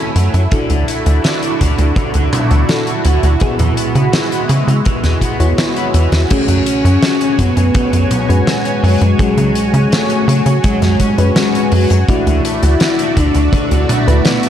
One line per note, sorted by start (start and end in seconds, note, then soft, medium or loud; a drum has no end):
0.00 0.48 A3 medium
0.00 6.26 E4 medium
0.00 0.48 G#5 medium
0.16 0.30 F#2 medium
0.16 0.29 F#3 medium
0.16 closed hi-hat loud
0.34 0.48 F#2 medium
0.34 0.39 F#3 medium
0.34 closed hi-hat medium
0.52 0.66 D3 medium
0.52 2.65 D4 medium
0.52 3.38 D4 medium
0.52 2.65 E4 medium
0.52 2.65 F#4 medium
0.52 6.26 F#4 medium
0.52 2.65 A4 medium
0.52 kick loud
0.52 closed hi-hat medium
0.70 0.84 D2 medium
0.70 0.84 D3 medium
0.70 closed hi-hat medium
0.88 1.02 A3 medium
0.88 closed hi-hat loud
1.06 1.20 D2 medium
1.06 1.15 A3 medium
1.06 closed hi-hat medium
1.24 1.33 D3 medium
1.24 snare loud
1.24 closed hi-hat medium
1.42 1.51 A3 loud
1.42 closed hi-hat medium
1.60 1.75 D2 medium
1.60 1.74 D3 medium
1.60 kick medium
1.60 closed hi-hat medium
1.78 1.92 D2 medium
1.78 1.84 D3 medium
1.78 closed hi-hat soft
1.96 2.10 D3 medium
1.96 kick loud
1.96 closed hi-hat medium
2.14 2.29 D2 medium
2.14 2.28 D3 medium
2.14 closed hi-hat medium
2.33 2.46 A3 medium
2.33 closed hi-hat loud
2.33 mid tom loud
2.51 2.65 D2 medium
2.51 2.60 A3 medium
2.51 closed hi-hat soft
2.69 2.78 D3 medium
2.69 2.85 D4 loud
2.69 2.85 E4 medium
2.69 2.85 F#4 medium
2.69 2.85 A4 loud
2.69 snare loud
2.69 closed hi-hat medium
2.87 2.96 A3 loud
2.87 closed hi-hat medium
3.05 3.19 D2 loud
3.05 3.19 D3 medium
3.05 closed hi-hat medium
3.23 3.37 D2 medium
3.23 3.29 D3 medium
3.23 closed hi-hat medium
3.40 3.55 E3 medium
3.40 6.27 G#3 medium
3.40 5.36 B3 medium
3.40 5.36 E4 medium
3.40 5.36 F#4 medium
3.40 5.36 G#4 medium
3.40 kick loud
3.40 closed hi-hat medium
3.59 3.73 E2 medium
3.59 3.73 E3 medium
3.59 closed hi-hat medium
3.59 mid tom medium
3.77 3.91 B3 medium
3.77 closed hi-hat loud
3.95 4.09 C#3 medium
3.95 4.05 B3 medium
3.95 closed hi-hat medium
4.13 4.23 E3 medium
4.13 snare loud
4.13 closed hi-hat medium
4.32 4.41 B3 loud
4.32 closed hi-hat medium
4.49 4.63 C#3 medium
4.49 4.63 E3 medium
4.49 closed hi-hat medium
4.67 4.81 C#3 medium
4.67 4.73 E3 medium
4.67 closed hi-hat medium
4.85 4.99 E3 medium
4.85 kick loud
4.85 closed hi-hat medium
5.04 5.18 E2 medium
5.04 5.17 E3 medium
5.04 snare soft
5.04 closed hi-hat medium
5.21 5.36 B3 medium
5.21 kick medium
5.21 closed hi-hat medium
5.40 5.54 E2 medium
5.40 6.26 B3 loud
5.40 5.49 B3 medium
5.40 6.26 E4 medium
5.40 6.26 F#4 medium
5.40 6.26 C#5 loud
5.40 closed hi-hat medium
5.58 5.67 E3 medium
5.58 snare loud
5.58 closed hi-hat medium
5.76 5.85 B3 loud
5.76 closed hi-hat medium
5.94 6.08 E2 medium
5.94 6.08 E3 medium
5.94 closed hi-hat medium
6.12 6.26 E2 medium
6.12 6.18 E3 medium
6.12 snare medium
6.12 closed hi-hat medium
6.30 6.44 F#3 medium
6.30 8.26 A3 medium
6.30 7.40 C#4 loud
6.30 8.26 C#4 medium
6.30 14.49 F#4 medium
6.30 8.26 F#4 medium
6.30 8.26 G#4 medium
6.30 12.05 C#5 medium
6.30 12.05 G#5 medium
6.30 kick loud
6.30 closed hi-hat medium
6.30 crash loud
6.48 6.62 F#2 medium
6.48 6.62 F#3 medium
6.48 closed hi-hat medium
6.66 6.80 C#4 medium
6.66 closed hi-hat loud
6.84 6.98 F#2 medium
6.84 6.94 C#4 medium
6.84 closed hi-hat medium
7.03 7.12 F#3 medium
7.03 snare loud
7.03 closed hi-hat medium
7.21 7.30 C#4 loud
7.21 closed hi-hat medium
7.39 7.53 F#2 loud
7.39 7.52 F#3 medium
7.39 8.33 B3 loud
7.39 kick medium
7.39 closed hi-hat medium
7.57 7.71 F#2 medium
7.57 7.62 F#3 medium
7.57 closed hi-hat medium
7.75 7.88 F#3 medium
7.75 kick loud
7.75 closed hi-hat medium
7.93 8.07 F#2 medium
7.93 8.07 F#3 medium
7.93 closed hi-hat medium
8.11 8.25 C#4 medium
8.11 closed hi-hat loud
8.11 mid tom medium
8.29 8.43 F#2 medium
8.29 9.15 G#3 loud
8.29 8.38 C#4 medium
8.29 9.15 C#4 medium
8.29 9.15 F#4 medium
8.29 9.15 B4 loud
8.29 closed hi-hat medium
8.47 8.56 F#3 medium
8.47 9.93 G#3 loud
8.47 snare loud
8.47 closed hi-hat medium
8.65 8.74 C#4 loud
8.65 closed hi-hat medium
8.83 8.97 F#2 loud
8.83 8.97 F#3 medium
8.83 open hi-hat medium
9.01 9.15 F#2 medium
9.01 9.07 F#3 medium
9.01 closed hi-hat medium
9.19 9.33 F#3 medium
9.19 11.15 F#3 medium
9.19 11.15 C#4 medium
9.19 11.15 F#4 medium
9.19 11.15 G#4 medium
9.19 kick loud
9.19 closed hi-hat medium
9.37 9.51 C#3 medium
9.37 9.51 F#3 medium
9.37 closed hi-hat medium
9.55 9.69 C#4 medium
9.55 closed hi-hat loud
9.74 9.87 C#3 medium
9.74 9.83 C#4 medium
9.74 closed hi-hat medium
9.92 10.01 F#3 medium
9.92 10.55 A3 loud
9.92 snare loud
9.92 closed hi-hat medium
10.10 10.19 C#4 loud
10.10 closed hi-hat medium
10.28 10.42 C#3 medium
10.28 10.42 F#3 medium
10.28 closed hi-hat loud
10.46 10.60 C#3 medium
10.46 10.51 F#3 medium
10.46 closed hi-hat medium
10.64 10.78 F#3 medium
10.64 11.27 G#3 loud
10.64 kick loud
10.64 closed hi-hat medium
10.82 10.96 F#2 medium
10.82 10.96 F#3 medium
10.82 snare soft
10.82 closed hi-hat medium
11.00 11.14 C#4 medium
11.00 kick medium
11.00 closed hi-hat loud
11.18 11.32 F#2 medium
11.18 12.04 G#3 loud
11.18 11.27 C#4 medium
11.18 12.04 C#4 loud
11.18 12.04 F#4 medium
11.18 12.04 B4 loud
11.18 closed hi-hat medium
11.36 11.45 F#3 medium
11.36 12.00 G#3 medium
11.36 snare loud
11.36 closed hi-hat medium
11.54 11.63 C#4 loud
11.54 closed hi-hat medium
11.72 11.86 F#2 loud
11.72 11.86 F#3 medium
11.72 open hi-hat medium
11.90 12.04 F#2 medium
11.90 11.96 F#3 medium
11.90 closed hi-hat medium
12.09 12.22 D3 medium
12.09 14.04 A3 medium
12.09 14.04 D4 medium
12.09 13.18 E4 loud
12.09 14.04 E4 medium
12.09 14.04 F#4 medium
12.09 14.49 D5 medium
12.09 14.49 E5 medium
12.09 kick loud
12.09 closed hi-hat medium
12.27 12.41 D2 medium
12.27 12.40 D3 medium
12.27 closed hi-hat medium
12.45 12.58 A3 medium
12.45 closed hi-hat loud
12.63 12.77 D2 medium
12.63 12.72 A3 medium
12.63 closed hi-hat medium
12.80 12.90 D3 medium
12.80 snare loud
12.80 closed hi-hat medium
12.99 13.08 A3 loud
12.99 closed hi-hat medium
13.17 13.31 D2 loud
13.17 13.31 D3 medium
13.17 14.11 D4 loud
13.17 kick medium
13.17 closed hi-hat medium
13.35 13.49 D2 medium
13.35 13.41 D3 medium
13.35 closed hi-hat medium
13.53 13.67 D3 medium
13.53 kick loud
13.53 closed hi-hat medium
13.71 13.85 D2 medium
13.71 13.85 D3 medium
13.71 closed hi-hat medium
13.89 14.03 A3 medium
13.89 closed hi-hat loud
13.89 mid tom medium
14.07 14.21 D2 medium
14.07 14.16 A3 medium
14.07 14.49 A3 loud
14.07 14.49 D4 medium
14.07 14.49 E4 medium
14.07 14.49 B4 loud
14.07 closed hi-hat medium
14.25 14.35 D3 medium
14.25 14.49 B3 loud
14.25 snare loud
14.25 closed hi-hat medium
14.43 14.49 A3 loud
14.43 closed hi-hat medium